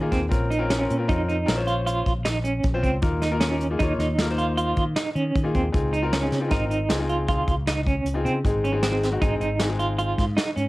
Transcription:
0.01 grand piano A#3 D#4 F4 G#4
0.12 fretless electric bass D#2, clean electric guitar C4, kick, snare, closed hi-hat
0.29 fretless electric bass A#1, grand piano C4 C#4 F4 A#4, kick, closed hi-hat
0.50 clean electric guitar D#4, closed hi-hat
0.59 grand piano C4 C#4 F4 A#4
0.70 clean electric guitar C#4, snare, closed hi-hat
0.79 grand piano C4 C#4 F4 A#4
0.90 fretless electric bass A#2, closed hi-hat
0.97 grand piano C4 C#4 F4 A#4
1.07 fretless electric bass F2, grand piano C4 C#4 F4 A#4, clean electric guitar D#4, kick, closed hi-hat
1.29 clean electric guitar D#4, closed hi-hat
1.46 fretless electric bass A#1, grand piano C4 C#4 F4 A#4, snare, closed hi-hat
1.56 grand piano C#4 F4 C5 C#5
1.67 clean electric guitar F4, closed hi-hat
1.86 clean electric guitar F4, closed hi-hat
2.06 fretless electric bass A#1, kick, closed hi-hat
2.25 clean electric guitar D#4, snare, closed hi-hat
2.44 clean electric guitar C#4, closed hi-hat
2.64 fretless electric bass A#1, kick, closed hi-hat
2.74 grand piano C4 C#4 F4 C5
2.83 fretless electric bass C#2, clean electric guitar C4, kick, closed hi-hat
3.02 fretless electric bass D#2, grand piano A#3 D#4 F4 A#4, kick, closed hi-hat
3.22 clean electric guitar D#4, snare, closed hi-hat
3.31 grand piano A#3 D#4 F4 A#4
3.40 clean electric guitar C#4, snare, closed hi-hat
3.50 grand piano A#3 D#4 F4 A#4
3.61 closed hi-hat
3.70 grand piano A#3 D#4 F4 G#4
3.79 fretless electric bass D#2, grand piano A#3 D#4 F4 C#5, clean electric guitar D#4, kick, closed hi-hat
3.99 fretless electric bass D#2, clean electric guitar D#4, snare, closed hi-hat
4.18 grand piano A#3 D#4 F4 A#4, snare, closed hi-hat
4.30 grand piano A#3 D#4 F4 C5
4.38 clean electric guitar F4, closed hi-hat
4.57 clean electric guitar F4, closed hi-hat
4.76 fretless electric bass D#3, kick, closed hi-hat
4.96 clean electric guitar D#4, snare, closed hi-hat
5.15 fretless electric bass D#3, clean electric guitar C#4, closed hi-hat
5.35 fretless electric bass D#3, kick, closed hi-hat
5.43 grand piano A#3 D#4 F4 G#4
5.54 fretless electric bass D#2, clean electric guitar C4, kick, closed hi-hat
5.72 fretless electric bass C#2, grand piano C4 D#4 F4 G#4, kick, closed hi-hat
5.93 clean electric guitar D#4, closed hi-hat
6.02 grand piano C4 D#4 F4 A#4
6.13 clean electric guitar C#4, snare, closed hi-hat
6.21 grand piano C4 D#4 F4 G#4
6.32 fretless electric bass C#3, snare, closed hi-hat
6.40 grand piano C4 D#4 F4 G#4
6.48 fretless electric bass G#1, grand piano C4 D#4 F4 A#4, clean electric guitar D#4, kick, snare, closed hi-hat
6.70 clean electric guitar D#4, closed hi-hat
6.89 fretless electric bass C#2, grand piano C4 D#4 F4 G#4, snare, closed hi-hat
6.99 grand piano C4 D#4 F4 G#4
7.09 clean electric guitar F4, closed hi-hat
7.28 clean electric guitar F4, kick, closed hi-hat
7.48 fretless electric bass C#2, kick, closed hi-hat
7.67 clean electric guitar D#4, snare, closed hi-hat
7.87 clean electric guitar C#4, kick, closed hi-hat
8.05 fretless electric bass C#2, closed hi-hat
8.14 grand piano C4 D#4 F4 G#4
8.25 fretless electric bass C#3, clean electric guitar C4, closed hi-hat
8.44 fretless electric bass G#1, grand piano G#3 C4 D#4 G#4, kick, closed hi-hat
8.64 clean electric guitar C#4, closed hi-hat
8.72 grand piano G#3 C4 D#4 G#4
8.83 clean electric guitar C4, snare, closed hi-hat
8.91 grand piano G#3 C4 D#4 G#4
9.03 snare, closed hi-hat
9.11 grand piano G#3 C4 D#4 F#4
9.21 fretless electric bass G#1, grand piano G#3 C4 D#4 G#4, clean electric guitar D#4, kick, closed hi-hat
9.40 fretless electric bass G#1, clean electric guitar D#4, closed hi-hat
9.59 grand piano G#3 C4 D#4 G#4, snare, closed hi-hat
9.69 grand piano G#3 C4 D#4 G#4
9.79 clean electric guitar F4, closed hi-hat
9.98 clean electric guitar F4, closed hi-hat
10.18 fretless electric bass G#2, kick, snare, closed hi-hat
10.37 clean electric guitar D#4, snare, closed hi-hat
10.56 fretless electric bass G#2, clean electric guitar C#4, closed hi-hat

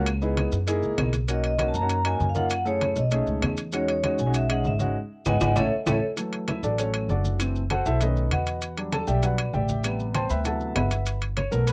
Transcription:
Already playing: upright bass C#2
0.06 high timbale, claves, maracas
0.22 grand piano B3 D#4 E4 G#4, high conga, maracas
0.37 high conga, high timbale, claves, maracas
0.52 upright bass F#2, maracas
0.67 grand piano A#3 D#4 E4 G#4, high conga, high timbale, maracas
0.83 upright bass C#2, high conga, maracas
0.98 upright bass B1, high conga, high timbale, low timbale, claves, maracas
1.13 high conga, high timbale, maracas
1.28 grand piano A#3 C#4 D#4 F#4, vibraphone D#5, high conga, high timbale, maracas
1.44 vibraphone D#5, high conga, high timbale, maracas
1.59 grand piano A#3 C#4 D#4 F#4, high conga, high timbale, claves, maracas
1.68 vibraphone A5
1.74 upright bass F#2, vibraphone A#5, high conga, maracas
1.81 grand piano A#3 C#4 D#4 F#4
1.89 high conga, high timbale, maracas
2.04 grand piano A#3 C#4 D#4 F#4, vibraphone G#5, high conga, high timbale, claves, maracas
2.20 upright bass F#2, high conga, maracas
2.29 vibraphone F5
2.35 grand piano A#3 C#4 D#4 F4, vibraphone F#5, high conga, maracas
2.50 high conga, high timbale, claves, maracas
2.65 grand piano A3 C#4 E4 G#4, vibraphone C#5, high conga, maracas
2.81 high conga, high timbale, claves, maracas
2.96 upright bass B1, vibraphone D#5, high conga, maracas
3.11 grand piano A3 C#4 D#4 G#4, high timbale, maracas
3.27 upright bass C#2, high conga, maracas
3.42 upright bass E2, high conga, high timbale, low timbale, claves, maracas
3.57 high timbale, maracas
3.72 grand piano G#3 C#4 D#4 F#4, vibraphone C#5, high conga, high timbale, maracas
3.88 vibraphone C#5, high conga, high timbale, maracas
4.03 grand piano G#3 C#4 D#4 F#4, high conga, high timbale, claves, maracas
4.19 upright bass B1, vibraphone G#5, high conga, maracas
4.26 grand piano G#3 C#4 D#4 F#4
4.34 vibraphone E5, high conga, high timbale, maracas
4.49 grand piano G#3 C#4 D#4 G#4, vibraphone F#5, high conga, high timbale, claves, maracas
4.65 upright bass G#1, vibraphone E5, high conga, maracas
4.79 grand piano G#3 C#4 D#4 F#4, high conga, maracas
5.26 upright bass G#1, grand piano G#3 B3 D#4, vibraphone D#5 F#5 G#5, high conga, high timbale, claves, maracas
5.41 upright bass G#1, grand piano G#3 B3 D#4, vibraphone D#5 F#5 G#5, high conga, high timbale, claves, maracas
5.56 upright bass A1, grand piano A3 C#4 E4, vibraphone A4 C#5 E5, high conga, high timbale, claves, maracas
5.86 upright bass A1, grand piano A3 C#4 E4, vibraphone A4 C#5 E5, high conga, high timbale, claves, maracas
6.17 grand piano E3 F#3 A3, high conga, high timbale, maracas
6.33 high conga, high timbale, maracas
6.48 grand piano E4 E5, high conga, high timbale, claves, maracas
6.63 upright bass A1, grand piano D4 F#4 A4 D5, high conga, maracas
6.78 grand piano C#4 F#4 A4 C#5, high conga, high timbale, maracas
6.94 high conga, high timbale, claves, maracas
7.09 upright bass F#1, grand piano D4 F#4 A4 D5, high conga, maracas
7.25 high conga, maracas
7.39 grand piano E3 A3 C4, high conga, high timbale, claves, maracas
7.55 high conga, maracas
7.70 grand piano F#4 A4 C5 F#5, high conga, high timbale, claves, maracas
7.86 upright bass B1, grand piano E4 A4 C5 E5, high conga, maracas
8.01 grand piano D#3 A3 C#4 D#4 A4 B4 D#5, high conga, high timbale, maracas
8.16 high conga, maracas
8.31 upright bass E2, grand piano F#4 B4 D#5 F#5, high conga, high timbale, claves, maracas
8.46 high timbale, maracas
8.62 high conga, high timbale, maracas
8.77 grand piano F#3 G3 D4, high conga, high timbale, maracas
8.92 grand piano A4 A5, high conga, high timbale, claves, maracas
9.07 upright bass B1, grand piano G4 D5 E5 G5, high conga, maracas
9.23 grand piano F#3 G3 D4 F#4 B4 D5 F#5, high conga, high timbale, maracas
9.38 high conga, high timbale, claves, maracas
9.53 upright bass A1, grand piano G4 D5 E5 G5, high conga, maracas
9.69 high conga, maracas
9.83 grand piano C3 G3 B3, high conga, high timbale, claves, maracas
10.00 high conga, maracas
10.15 grand piano C5 G5 A5 C6, high conga, high timbale, claves, maracas
10.30 upright bass D2, grand piano B4 E5 G5 B5, high conga, maracas
10.45 grand piano C3 E3 F#3 B3 A4 E5 F#5 A5, high conga, high timbale, maracas
10.61 high conga, maracas
10.76 upright bass G1, grand piano B4 E5 F#5 B5, high conga, high timbale, low timbale, claves, maracas
10.91 high timbale, maracas
11.06 high conga, high timbale, maracas
11.21 high conga, high timbale, maracas
11.37 grand piano C#5, high conga, high timbale, claves, maracas
11.51 upright bass B1, grand piano F#3 A3 B3 A#4, maracas
11.67 grand piano B4, high conga, high timbale, maracas

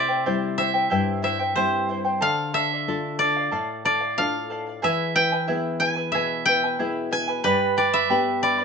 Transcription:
Already playing: nylon-string guitar C3, koto A3 C5 D5 E5
0.08 charango E4 C5 G5
0.26 nylon-string guitar G3 C4 E4, charango E4 G4 C5 E5 G5
0.58 charango E4 C5 E5 G5, koto E5
0.74 charango E4 C5 G5
0.90 nylon-string guitar G2, charango E4 G4 C5 E5 G5
1.22 charango E4 C5 E5 G5, koto E5
1.39 charango E4 C5 G5
1.56 nylon-string guitar G3 C4 E4, charango E4 G4 C5 E5 G5, koto C5
1.89 charango E4 C5 E5 G5
2.05 charango E4 C5 G5
2.21 nylon-string guitar D3, charango A4 D5 F5, koto F5
2.53 charango A4 D5 F5, koto E5
2.71 charango D5 F5
2.88 nylon-string guitar A3 D4 F4, charango A4 D5
3.19 charango A4 D5 F5, koto D5
3.36 charango D5 F5
3.51 nylon-string guitar A2, charango A4 D5 F5
3.85 charango A4 D5 F5, koto D5
4.00 charango D5 F5
4.18 nylon-string guitar A3 D4 F4, charango A4 D5 F5, koto F5
4.50 charango A4 D5 F5
4.67 charango D5 F5
4.82 nylon-string guitar E3, charango E4 G#4 B4 E5 G#5, koto E5
5.15 charango E4 B4 E5 G#5, koto G5
5.32 charango E4 B4 G#5
5.48 nylon-string guitar B3 E4 G#4, charango E4 G#4 B4 E5
5.80 charango E4 B4 E5 G#5, koto G#5
5.96 charango E4 B4 G#5
6.12 nylon-string guitar B2, charango E4 G#4 B4 E5 G#5, koto E5
6.46 charango E4 B4 E5 G#5, koto G5
6.64 charango E4 B4 G#5
6.79 nylon-string guitar B3 E4 G#4, charango E4 G#4 B4 E5
7.11 charango E4 B4 E5 G#5, koto G#5
7.28 charango E4 B4 G#5
7.44 nylon-string guitar G2, charango G4 B4 D5 G5 B5, koto B4
7.77 charango B4 D5 G5 B5, koto D5
7.94 charango B4 D5 B5, koto E5
8.10 nylon-string guitar B3 D4 G4, charango G4 B4 D5 G5 B5
8.42 charango B4 D5 G5 B5, koto D5
8.58 charango B4 D5 B5

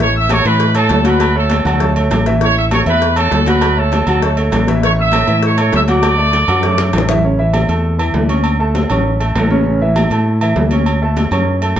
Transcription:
Already playing: fingered electric bass A1
0.00 grand piano E3 E4 E5, trumpet section C#5 C#6, cowbell
0.14 trumpet section E5 E6, high conga
0.29 grand piano A3 A4 C#5, trumpet section C#5 C#6, cowbell, high conga, low timbale, low agogo
0.45 fingered electric bass A2, grand piano E3 E4 E5, trumpet section B4 B5, high conga, low agogo
0.59 cowbell, high conga
0.74 grand piano A3 A4 C#5, trumpet section A4 A5, cowbell, high conga, low agogo
0.89 fingered electric bass D2, cowbell, high conga, low timbale
1.04 grand piano F#3 F#4 F#5, trumpet section B4 B5, cowbell, high conga, low agogo
1.20 cowbell, high conga, low agogo
1.35 grand piano A3 A4 C#5, trumpet section A4 A5, high conga
1.50 cowbell, high conga, low timbale, low agogo
1.65 fingered electric bass D2, grand piano F#3 F#4 F#5, trumpet section A4 A5, high conga, low conga, low agogo
1.80 grand piano A3 A4 C#5, cowbell, high conga, low conga
1.95 grand piano A3 A4 C#5, high conga, low agogo
2.10 fingered electric bass A1, cowbell, high conga, low timbale, low agogo
2.26 grand piano E3 E4 E5, cowbell, high conga
2.41 grand piano E3 E4 E5, trumpet section C#5 C#6, cowbell, high conga
2.56 trumpet section E5 E6, high conga
2.71 grand piano A3 A4 C#5, trumpet section C#5 C#6, cowbell, high conga, low timbale, low agogo
2.86 fingered electric bass E2, grand piano E3 E4 E5, trumpet section B4 B5, high conga, low agogo
3.02 cowbell, high conga
3.16 grand piano A3 A4 C#5, trumpet section A4 A5, cowbell, high conga, low agogo
3.31 fingered electric bass D2, cowbell, high conga, low timbale
3.46 grand piano F#3 F#4 F#5, trumpet section B4 B5, cowbell, high conga, low agogo
3.61 cowbell, high conga, low agogo
3.77 grand piano A3 A4 C#5, trumpet section A4 A5, high conga
3.92 cowbell, high conga, low timbale, low agogo
4.07 fingered electric bass D2, grand piano F#3 F#4 F#5, trumpet section A4 A5, high conga, low conga, low agogo
4.22 grand piano A3 A4 C#5, cowbell, high conga
4.37 grand piano A3 A4 C#5, high conga, low agogo
4.52 fingered electric bass A1, cowbell, high conga, low timbale, low agogo
4.67 grand piano E3 E4 E5, cowbell, high conga
4.82 grand piano E3 E4 E5, trumpet section C#5 C#6, cowbell, high conga
4.97 trumpet section E5 E6, high conga
5.12 grand piano A3 A4 C#5, cowbell, high conga, low timbale, low agogo
5.27 fingered electric bass A2, grand piano E3 E4 E5, high conga, low agogo
5.43 trumpet section C#5 C#6, cowbell, high conga
5.58 grand piano A3 A4 C#5, trumpet section C#5 C#6, cowbell, high conga, low agogo
5.72 fingered electric bass D2, trumpet section E5 E6, cowbell, high conga, low timbale
5.88 grand piano F#3 F#4 F#5, trumpet section D5 D6, cowbell, high conga, low agogo
6.03 cowbell, high conga, low agogo
6.18 grand piano A3 A4 D5
6.33 cowbell, low timbale, low agogo
6.48 fingered electric bass F#2, grand piano F#3 F#4 F#5, low conga, low agogo
6.63 grand piano A3 A4 C#5, cowbell, low conga
6.78 grand piano A3 A4 C#5, high bongo, low conga, low agogo
6.93 fingered electric bass A1, cowbell, low conga, low timbale, low agogo
6.98 low bongo
7.09 grand piano E3 E4 E5, cowbell, low bongo, low conga
7.24 grand piano C#3 C#4 C#5, high conga
7.39 grand piano E3 E4 E5, high conga
7.54 high conga, low timbale, low agogo
7.68 fingered electric bass E2, grand piano A3 A4 A5, high conga, low agogo
7.85 high conga
7.99 grand piano E3 E4 E5, high conga, low agogo
8.14 fingered electric bass D2, high conga, low timbale
8.29 grand piano C#4 C#5 C#6, high conga, low agogo
8.44 high conga, low agogo
8.60 grand piano A3 A4 A5, high conga
8.75 high conga, low timbale, low agogo
8.90 fingered electric bass A1, grand piano C#4 C#5 C#6, high conga, low conga, low agogo
9.06 high conga
9.20 grand piano A3 A4 A5, high conga, low agogo
9.35 fingered electric bass A1, high conga, low timbale, low agogo
9.50 grand piano C#3 C#4 C#5, high conga
9.65 grand piano C#3 C#4 C#5, high conga
9.81 grand piano E3 E4 E5, high conga
9.96 high conga, low timbale, low agogo
10.10 fingered electric bass A2, grand piano A3 A4 A5, high conga, low agogo
10.26 high conga
10.41 grand piano E3 E4 E5, high conga, low agogo
10.56 fingered electric bass D2, high conga, low timbale
10.71 grand piano C#4 C#5 C#6, high conga, low agogo
10.86 high conga, low agogo
11.02 grand piano A3 A4 A5, high conga
11.16 high conga, low timbale, low agogo
11.31 fingered electric bass F#2, grand piano C#4 C#5 C#6, high conga, low conga, low agogo
11.47 high conga
11.62 grand piano A3 A4 A5, high conga, low agogo
11.76 fingered electric bass A1, low timbale, low agogo

